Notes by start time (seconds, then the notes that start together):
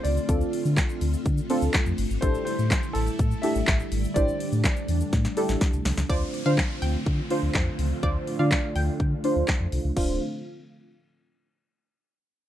Already playing: D3 A3 C4 D4 F4 A4
0.03 C#2 D5, open hi-hat, shaker
0.17 shaker
0.29 D2 C4 D4 F4 A4, kick, closed hi-hat, shaker
0.41 shaker
0.53 open hi-hat, shaker
0.65 D3, shaker
0.77 kick, snare, clap, closed hi-hat, shaker
0.89 shaker
1.01 D2, open hi-hat, shaker
1.13 shaker
1.26 D3, kick, closed hi-hat, shaker
1.38 shaker
1.50 C4 D4 F4 A4, open hi-hat, shaker
1.62 D2, shaker
1.74 kick, snare, clap, closed hi-hat, shaker
1.86 F2, shaker
1.98 G1, open hi-hat, shaker
2.10 G#1, shaker
2.21 A1 G3 D4 E4 G4 A4 C5, kick, closed hi-hat, shaker
2.35 shaker
2.45 C5, open hi-hat, shaker
2.59 A2, shaker
2.71 kick, snare, clap, closed hi-hat, shaker
2.83 shaker
2.93 A1 A4, open hi-hat, shaker
3.07 shaker
3.19 A2, kick, closed hi-hat, shaker
3.31 shaker
3.42 D4 E4 G4 A4 E5, open hi-hat, shaker
3.55 A1, shaker
3.67 A1, kick, snare, clap, closed hi-hat, shaker
3.80 shaker
3.92 G#1, open hi-hat, shaker
4.04 shaker
4.14 A1 D4 E4 G4 C5 D5, kick, closed hi-hat, shaker
4.28 shaker
4.40 open hi-hat, shaker
4.52 A2, shaker
4.64 kick, snare, clap, closed hi-hat, shaker
4.76 shaker
4.88 E2, open hi-hat, shaker
5.00 shaker
5.13 A2, kick, snare, closed hi-hat, shaker
5.25 snare, shaker
5.37 D4 E4 G4 A4, open hi-hat, shaker
5.49 A1, snare, shaker
5.61 kick, snare, closed hi-hat, shaker
5.73 C2, shaker
5.85 C2, snare, open hi-hat, shaker
5.97 C#2, snare, shaker
6.09 D2 D3 A3 C4 D4 F4 C5 D5, kick, closed hi-hat, downlifter
6.34 open hi-hat
6.45 D3 D4 F4 C5 F5
6.58 kick, snare, clap, closed hi-hat
6.82 D2 G5, open hi-hat
7.06 D3, kick, closed hi-hat
7.30 D4 F4 C5, open hi-hat
7.43 D2
7.54 F2, kick, snare, clap, closed hi-hat
7.79 C#2, open hi-hat
8.03 D2 D4 F4 C5 D5, kick, closed hi-hat
8.27 open hi-hat
8.39 D3 D4 F4 D5 F5
8.51 kick, snare, clap, closed hi-hat
8.76 D2 G5, open hi-hat
9.00 D3, kick, closed hi-hat
9.24 D4 F4 C5, open hi-hat
9.36 D2
9.48 kick, snare, clap, closed hi-hat
9.60 F2
9.72 C2, open hi-hat
9.84 C#2
9.97 D1 D3 A3 C4 D4 F4 C5 F5, kick, crash